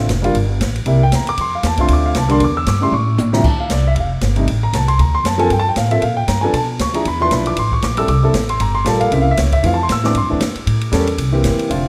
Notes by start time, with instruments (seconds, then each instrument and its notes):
0.09 upright bass F1, kick, snare, hi-hat pedal, ride
0.22 grand piano D3 G3 A#3 F4, ride
0.34 upright bass G1, kick, ride
0.60 upright bass A1, kick, snare, hi-hat pedal, ride
0.76 ride
0.86 upright bass C2, grand piano C3 G3 A#3 E4, kick, ride
1.03 grand piano G5
1.12 upright bass E2, grand piano A#5, kick, snare, hi-hat pedal, ride
1.27 grand piano D6, ride
1.37 upright bass F2, grand piano C6, kick, ride
1.55 grand piano F5
1.63 upright bass E2, grand piano A5, kick, snare, hi-hat pedal, ride
1.77 grand piano D3 A3 C4 F4 C6, kick, ride
1.88 upright bass D2, kick, ride
1.93 grand piano D6
2.06 grand piano F5
2.14 upright bass C2, grand piano A5, kick, snare, hi-hat pedal, ride
2.29 grand piano D3 G3 A#3 D4 C6, ride
2.40 upright bass E2, kick, ride
2.44 grand piano D6
2.57 grand piano E6
2.66 upright bass G2, grand piano D6, kick, snare, hi-hat pedal, ride
2.81 grand piano C#3 G3 A3 E4 C6
2.91 upright bass A2, grand piano C#6, high tom
3.17 upright bass A1, hi-hat pedal, high tom
3.33 grand piano D2 C3 F3 G3 E4 A#5, snare
3.44 upright bass D2, grand piano A5, kick, crash
3.60 grand piano F5
3.69 upright bass C2, grand piano D5, kick, snare, hi-hat pedal, ride
3.87 grand piano E5
3.95 upright bass F1, kick, ride
4.00 grand piano F5
4.21 upright bass G1, kick, snare, hi-hat pedal, ride
4.36 grand piano C3 G3 A3 D#4, ride
4.47 upright bass A1, kick, ride
4.63 grand piano A#5
4.73 upright bass C2, grand piano A5, kick, snare, hi-hat pedal, ride
4.88 grand piano C6, ride
4.98 upright bass D2, grand piano A#5, ride
5.15 grand piano C6
5.24 upright bass F#2, grand piano A5, kick, snare, hi-hat pedal, ride
5.38 grand piano F3 A#3 C4 A4 G#5, ride
5.50 upright bass G2, grand piano G5, kick, ride
5.59 grand piano A5
5.69 grand piano G5
5.76 upright bass A2, grand piano F5, kick, snare, hi-hat pedal, ride
5.90 grand piano F3 A#3 C4 A4 E5, ride
6.02 upright bass A#2, grand piano F5, kick, ride
6.17 grand piano G5
6.28 upright bass G2, grand piano A#5, kick, snare, hi-hat pedal, ride
6.41 grand piano F3 B3 D4 A4 G#5
6.53 upright bass B2, grand piano A5, kick, ride
6.79 upright bass D2, grand piano C#6, kick, snare, hi-hat pedal, ride
6.93 grand piano F3 D4 E4 G#4 A#5, ride
7.05 upright bass E2, grand piano B5, kick, ride
7.20 grand piano F3 D4 E4 B4 C6
7.31 upright bass B1, grand piano B5, kick, snare, hi-hat pedal, ride
7.46 grand piano D6, ride
7.57 upright bass A1, grand piano C6, kick, ride
7.72 grand piano C#6, kick
7.82 upright bass A#1, grand piano D6, snare, hi-hat pedal, ride
7.97 grand piano G3 C4 E4 A4 E6, ride
8.08 upright bass C2, grand piano D6, kick, ride
8.23 grand piano G3 C4 E4 A4
8.34 upright bass A1, kick, snare, hi-hat pedal, ride
8.49 grand piano C6, ride
8.60 upright bass G1, grand piano A#5, kick, ride
8.75 grand piano C6
8.85 upright bass A#1, grand piano G3 A#3 F4 A4 A5, kick, snare, hi-hat pedal, ride
9.00 grand piano F5, ride
9.11 upright bass C2, grand piano C#3 A#3 C4 E4 E5, kick, ride
9.21 grand piano F5
9.31 grand piano E5
9.37 upright bass C#2, grand piano C#5, kick, snare, hi-hat pedal, ride
9.52 grand piano E5, kick, ride
9.63 upright bass F2, grand piano E3 A3 C4 F4 F5, kick, ride
9.74 grand piano A5
9.83 grand piano C6
9.89 upright bass A2, grand piano E6, kick, snare, hi-hat pedal, ride
10.04 grand piano E3 A3 C4 D4 D6, snare
10.15 upright bass G2, grand piano C6, kick, ride
10.23 upright bass F2
10.30 upright bass E2, grand piano E3 A3 C4 D4
10.40 upright bass F2, kick, snare, hi-hat pedal, ride
10.55 muted upright bass stroke, ride
10.66 upright bass A2, kick, ride
10.81 ride
10.92 upright bass E2, grand piano G3 A#3 C#4 A4, kick, snare, hi-hat pedal, ride
11.07 ride
11.18 upright bass C2, kick, ride
11.32 grand piano E3 A#3 C4 G4
11.44 upright bass G1, kick, snare, hi-hat pedal, ride
11.59 muted upright bass stroke, ride
11.68 upright bass F1, grand piano D3 F3 A3 C4 F4, kick, ride